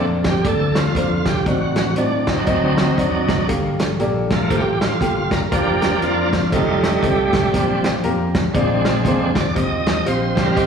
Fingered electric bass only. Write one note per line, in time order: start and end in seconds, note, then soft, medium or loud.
0.00 0.37 F2 medium
0.45 0.88 D2 loud
0.95 1.21 F2 medium
1.26 1.43 C2 medium
1.47 1.98 A1 loud
1.97 2.40 A2 medium
2.47 2.91 D2 loud
2.98 3.24 D#2 medium
3.29 3.46 C2 medium
3.49 3.92 G1 loud
4.00 4.43 A#1 medium
4.50 4.94 A1 loud
5.01 5.27 G1 medium
5.31 5.49 F#1 medium
5.52 5.95 F1 medium
6.03 6.46 F2 medium
6.53 6.96 F1 loud
7.03 7.29 C2 medium
7.33 7.51 B1 medium
7.54 7.97 A#1 loud
8.05 8.47 F2 medium
8.55 9.07 A#1 loud
9.05 9.31 F2 medium
9.36 9.53 E2 medium
9.56 9.99 D#2 medium
10.07 10.49 A#1 medium
10.57 10.66 C2 loud